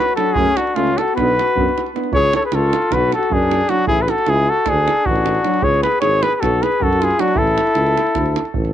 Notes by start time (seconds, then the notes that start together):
Already playing: F#4 B4
0.09 davul high
0.16 F#3 D4 F#4 A4, davul high
0.33 F#2 A3 C#4 G#4, davul low
0.46 davul high
0.57 D4 F#4, davul high
0.67 davul high
0.75 C#2 A3 C#4 F4, davul high
0.87 davul high
0.97 F#4 A4, davul high
1.08 davul high
1.15 B1 B3 D4 B4, davul high, davul low
1.19 F#4
1.28 davul high
1.39 davul high
1.47 davul high
1.56 F#2 B3 D4, davul low
1.69 davul high
1.78 davul high
1.86 davul high
1.95 B3 D4, davul high
2.04 davul high
2.12 C#2 C#5, davul low
2.16 G#4
2.24 davul high
2.34 A4 C#5, davul high
2.43 G#4 B4, davul high
2.52 C#2 F4 A4, davul high
2.73 davul high
2.82 davul high
2.91 B1 B4, davul high, davul low
2.95 F#4
3.12 A4, davul high
3.17 F#4
3.23 davul high
3.30 F#2 D4 G#4, davul low
3.43 davul high
3.51 davul high
3.61 davul high
3.69 F#3 D4 F#4, davul high
3.79 davul high
3.87 A1 E4 G#4, davul low
3.98 B4, davul high
4.04 G#4
4.08 F#4 A4, davul high
4.18 davul high
4.26 C#2 E4 G#4, davul high
4.48 F#4 A4
4.57 davul high
4.66 D2 D4 G#4, davul high, davul low
4.88 davul high
4.97 davul high
5.06 A1 D4 F#4, davul low
5.16 davul high
5.26 davul high
5.35 davul high
5.45 F#3 D4, davul high
5.54 davul high
5.62 C#2 G#4 C#5, davul low
5.74 davul high
5.83 G#4 B4, davul high
5.92 davul high
6.01 G#1 G#4 C#5, davul high
6.23 G#4 B4, davul high
6.33 G#4 B4, davul high
6.40 B1 F#4 A4, davul high, davul low
6.63 G#4 B4, davul high
6.72 davul high
6.81 F#2 F#4 A4, davul low
6.93 davul high
7.00 F4, davul high
7.04 G#4
7.11 davul high
7.18 F#3 D4 F#4, davul high
7.28 davul high
7.34 A1 E4 A4, davul low
7.47 davul high
7.58 davul high
7.67 davul high
7.75 C#2, davul high
7.87 davul high
7.97 davul high
8.07 davul high
8.15 D2, davul high, davul low
8.26 davul high
8.36 davul high
8.45 davul high
8.54 A1, davul low
8.65 davul high